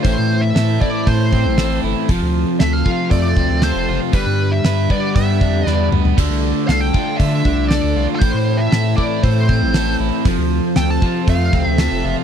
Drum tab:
CC |----------------|----------------|----------------|x---------------|
HH |o---o---o---o---|o---o---o---o---|o---o---o-------|o---o---o---o---|
SD |----o-------o---|----o-------o---|----o-------o---|----o-------o---|
T2 |----------------|----------------|--------------o-|----------------|
FT |----------------|----------------|---------------o|----------------|
BD |o-----o-o-o-----|o-----o-o-o-----|o-----o-o-o-----|o-----o-o-o-----|

CC |----------------|----------------|
HH |o---o---o---o---|o---o---o---o---|
SD |----o-------o---|----o-------o---|
T2 |----------------|----------------|
FT |----------------|----------------|
BD |o-----o-o-o-----|o-----o-o-o-----|